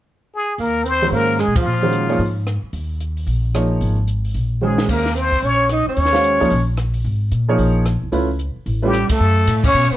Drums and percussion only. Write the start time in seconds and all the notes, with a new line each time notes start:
0.59 open hi-hat
0.86 closed hi-hat
1.02 open hi-hat
1.13 open hi-hat
1.39 cross-stick, closed hi-hat
1.56 kick, ride
1.93 closed hi-hat
2.09 open hi-hat
2.19 open hi-hat
2.47 cross-stick, closed hi-hat
2.73 open hi-hat
3.01 closed hi-hat
3.17 open hi-hat
3.27 open hi-hat
3.55 cross-stick, closed hi-hat
3.81 open hi-hat
4.08 closed hi-hat
4.25 open hi-hat
4.34 open hi-hat
4.78 snare
4.89 kick, crash
5.06 snare
5.16 closed hi-hat
5.32 open hi-hat
5.43 open hi-hat
5.69 cross-stick, closed hi-hat
5.97 open hi-hat
6.05 snare
6.15 snare
6.24 closed hi-hat
6.40 open hi-hat
6.50 open hi-hat
6.77 cross-stick, closed hi-hat
6.94 open hi-hat
7.04 open hi-hat
7.32 closed hi-hat
7.59 open hi-hat
7.85 cross-stick, closed hi-hat
8.13 open hi-hat
8.39 closed hi-hat
8.66 open hi-hat
8.94 cross-stick, closed hi-hat
9.10 kick, ride
9.47 hi-hat pedal, ride
9.64 kick, crash